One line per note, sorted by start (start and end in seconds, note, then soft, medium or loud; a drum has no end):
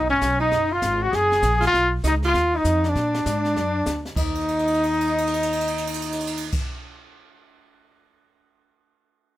0.01 0.10 B1 medium
0.10 0.21 G#1 medium
0.10 0.39 C#4 medium
0.21 0.51 B1 medium
0.21 kick soft
0.21 snare medium
0.21 hi-hat pedal soft
0.40 0.72 D#4 medium
0.40 0.74 D#4 medium
0.52 0.82 F#1 medium
0.52 brush sweep soft
0.52 kick soft
0.52 snare soft
0.71 1.03 F4 medium
0.71 1.04 F4 medium
0.82 1.12 G#1 medium
0.82 kick soft
0.82 snare medium
0.82 hi-hat pedal medium
1.02 1.13 F#4 medium
1.02 1.17 F#4 medium
1.12 1.41 F#1 medium
1.12 1.60 G#4 medium
1.12 1.64 G#4 loud
1.12 brush sweep soft
1.12 kick soft
1.12 snare soft
1.32 snare soft
1.42 1.72 A#1 medium
1.42 kick soft
1.42 snare medium
1.42 hi-hat pedal medium
1.61 1.90 F4 medium
1.61 snare soft
1.67 1.93 F4 loud
1.73 2.03 B1 medium
1.73 brush sweep medium
1.73 kick soft
1.73 snare soft
2.04 2.33 C#2 medium
2.04 2.13 D#4 medium
2.04 2.15 D#4 medium
2.04 kick soft
2.04 snare medium
2.04 hi-hat pedal medium
2.23 2.56 F4 medium
2.23 snare soft
2.27 2.58 F4 medium
2.34 2.64 D#2 medium
2.34 brush sweep soft
2.34 kick soft
2.34 snare soft
2.54 2.86 D#4 medium
2.54 2.91 D#4 medium
2.64 2.94 F2 medium
2.64 kick soft
2.64 snare medium
2.64 hi-hat pedal medium
2.84 4.06 D4 medium
2.84 snare soft
2.89 4.08 D4 medium
2.95 3.25 A#2 medium
2.95 brush sweep soft
2.95 kick soft
2.95 snare soft
3.14 snare medium
3.26 3.55 G#2 medium
3.26 kick soft
3.26 snare medium
3.26 hi-hat pedal medium
3.45 snare soft
3.56 3.85 F#2 medium
3.56 brush sweep soft
3.56 kick soft
3.56 snare soft
3.86 4.16 D2 medium
3.86 kick soft
3.86 snare medium
3.86 hi-hat pedal medium
4.05 snare soft
4.16 6.54 D#2 medium
4.16 6.54 D#4 medium
4.16 6.55 D#4 medium
4.16 kick medium
4.16 crash medium
4.35 crash soft
4.41 ride soft
4.48 crash soft
4.59 ride soft
4.67 crash soft
4.74 ride soft
4.83 crash soft
4.93 ride soft
5.01 crash medium
5.07 ride medium
5.18 crash medium
5.27 ride medium
5.34 crash medium
5.43 ride medium
5.53 crash medium
5.61 ride medium
5.68 crash medium
5.78 ride medium
5.87 crash medium
5.94 ride medium
6.02 crash medium
6.12 ride medium
6.20 crash medium
6.27 ride medium
6.37 crash medium
6.52 kick medium
6.52 crash medium